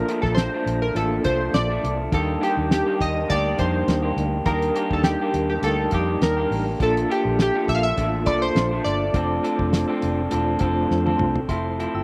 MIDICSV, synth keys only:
0, 0, Header, 1, 2, 480
1, 0, Start_track
1, 0, Tempo, 585938
1, 1740, Time_signature, 4, 2, 24, 8
1, 9860, End_track
2, 0, Start_track
2, 0, Title_t, "Synth keys"
2, 0, Program_c, 0, 88
2, 0, Note_on_c, 0, 70, 90
2, 180, Note_on_c, 0, 69, 80
2, 198, Note_off_c, 0, 70, 0
2, 284, Note_on_c, 0, 72, 92
2, 298, Note_off_c, 0, 69, 0
2, 672, Note_on_c, 0, 70, 84
2, 676, Note_off_c, 0, 72, 0
2, 784, Note_off_c, 0, 70, 0
2, 789, Note_on_c, 0, 69, 93
2, 1021, Note_on_c, 0, 72, 92
2, 1032, Note_off_c, 0, 69, 0
2, 1263, Note_on_c, 0, 74, 95
2, 1268, Note_off_c, 0, 72, 0
2, 1607, Note_off_c, 0, 74, 0
2, 1754, Note_on_c, 0, 69, 92
2, 1994, Note_off_c, 0, 69, 0
2, 1995, Note_on_c, 0, 67, 84
2, 2219, Note_off_c, 0, 67, 0
2, 2229, Note_on_c, 0, 67, 92
2, 2468, Note_on_c, 0, 75, 96
2, 2471, Note_off_c, 0, 67, 0
2, 2701, Note_on_c, 0, 74, 107
2, 2710, Note_off_c, 0, 75, 0
2, 2943, Note_on_c, 0, 72, 91
2, 2946, Note_off_c, 0, 74, 0
2, 3387, Note_off_c, 0, 72, 0
2, 3654, Note_on_c, 0, 70, 84
2, 4038, Note_off_c, 0, 70, 0
2, 4041, Note_on_c, 0, 69, 81
2, 4128, Note_on_c, 0, 67, 87
2, 4145, Note_off_c, 0, 69, 0
2, 4493, Note_off_c, 0, 67, 0
2, 4503, Note_on_c, 0, 67, 76
2, 4616, Note_off_c, 0, 67, 0
2, 4620, Note_on_c, 0, 69, 97
2, 4864, Note_off_c, 0, 69, 0
2, 4868, Note_on_c, 0, 67, 84
2, 5085, Note_off_c, 0, 67, 0
2, 5102, Note_on_c, 0, 70, 87
2, 5444, Note_off_c, 0, 70, 0
2, 5592, Note_on_c, 0, 69, 97
2, 5829, Note_on_c, 0, 67, 89
2, 5830, Note_off_c, 0, 69, 0
2, 6068, Note_off_c, 0, 67, 0
2, 6080, Note_on_c, 0, 67, 98
2, 6300, Note_on_c, 0, 76, 98
2, 6313, Note_off_c, 0, 67, 0
2, 6346, Note_on_c, 0, 77, 89
2, 6361, Note_off_c, 0, 76, 0
2, 6414, Note_off_c, 0, 77, 0
2, 6416, Note_on_c, 0, 76, 104
2, 6769, Note_on_c, 0, 74, 96
2, 6782, Note_off_c, 0, 76, 0
2, 6897, Note_on_c, 0, 72, 102
2, 6907, Note_off_c, 0, 74, 0
2, 7245, Note_on_c, 0, 74, 95
2, 7260, Note_off_c, 0, 72, 0
2, 8898, Note_off_c, 0, 74, 0
2, 9860, End_track
0, 0, End_of_file